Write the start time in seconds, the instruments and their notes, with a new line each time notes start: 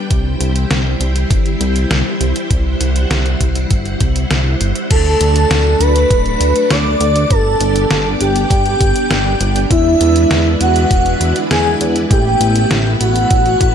Already playing: string machine G5
0.11 analog synth bass C2, string machine G3 E4 C5, kick, closed hi-hat
0.40 analog synth bass C2, closed hi-hat
0.56 closed hi-hat
0.71 analog synth bass C2, snare, closed hi-hat
1.00 analog synth bass C2, closed hi-hat
1.16 closed hi-hat
1.31 analog synth bass G1, kick, closed hi-hat
1.46 closed hi-hat
1.61 analog synth bass C2, closed hi-hat
1.76 closed hi-hat
1.91 analog synth bass C2, snare, closed hi-hat
2.21 analog synth bass C2, closed hi-hat
2.36 closed hi-hat
2.50 analog synth bass C2, string machine F#5, kick, closed hi-hat
2.81 analog synth bass C2, closed hi-hat
2.96 closed hi-hat
3.10 analog synth bass C2, snare, closed hi-hat
3.26 closed hi-hat
3.41 analog synth bass C2, kick, closed hi-hat
3.55 closed hi-hat
3.71 analog synth bass G1, kick, closed hi-hat
3.86 closed hi-hat
4.00 analog synth bass C2, kick, closed hi-hat
4.16 closed hi-hat
4.31 analog synth bass C2, snare, closed hi-hat
4.61 analog synth bass G1, closed hi-hat
4.76 closed hi-hat
4.90 analog synth bass D2, string machine A3 D4 F#4 D5, analog synth lead A4, digital synth lead A5, kick, closed hi-hat, crash
5.21 analog synth bass D2, closed hi-hat
5.36 closed hi-hat
5.50 analog synth bass D2, snare, closed hi-hat
5.80 analog synth bass D2, analog synth lead B4, digital synth lead B5, closed hi-hat
5.96 closed hi-hat
6.11 analog synth bass D1, kick, closed hi-hat
6.26 closed hi-hat
6.40 analog synth bass D2, closed hi-hat
6.56 closed hi-hat
6.70 analog synth bass D2, analog synth lead D5, digital synth lead D6, snare, closed hi-hat
7.00 analog synth bass D2, closed hi-hat
7.16 closed hi-hat
7.30 analog synth bass G1, string machine B3 D4 G4, analog synth lead A4, digital synth lead A5, kick, closed hi-hat
7.60 analog synth bass G1, closed hi-hat
7.76 closed hi-hat
7.91 analog synth bass G1, snare, closed hi-hat
8.20 analog synth bass G1, analog synth lead G4, digital synth lead G5, closed hi-hat
8.36 closed hi-hat
8.50 analog synth bass G2, kick, closed hi-hat
8.66 closed hi-hat
8.80 analog synth bass G1, kick, closed hi-hat
8.96 closed hi-hat
9.11 analog synth bass G1, snare, closed hi-hat
9.41 analog synth bass G1, closed hi-hat
9.56 closed hi-hat
9.71 analog synth bass E2, string machine G#3 E4 B4, analog synth lead E4, digital synth lead E5, kick, closed hi-hat
10.01 analog synth bass E2, closed hi-hat
10.16 closed hi-hat
10.31 analog synth bass E2, snare, closed hi-hat
10.60 analog synth bass E2, analog synth lead F#4, digital synth lead F#5, closed hi-hat
10.76 closed hi-hat
10.91 analog synth bass E1, kick, closed hi-hat
11.06 closed hi-hat
11.21 analog synth bass E2, closed hi-hat
11.36 closed hi-hat
11.50 analog synth bass E2, analog synth lead G#4, digital synth lead G#5, snare, closed hi-hat
11.81 analog synth bass E2, closed hi-hat
11.96 closed hi-hat
12.11 analog synth bass A1, string machine A3 B3 B4, analog synth lead G4, digital synth lead G5, kick, closed hi-hat
12.41 analog synth bass A1, closed hi-hat
12.56 closed hi-hat
12.71 analog synth bass A1, snare, closed hi-hat
13.01 analog synth bass A1, analog synth lead F#4, digital synth lead F#5, closed hi-hat
13.16 closed hi-hat
13.31 analog synth bass A1, kick, closed hi-hat
13.46 closed hi-hat
13.61 analog synth bass A1, kick, closed hi-hat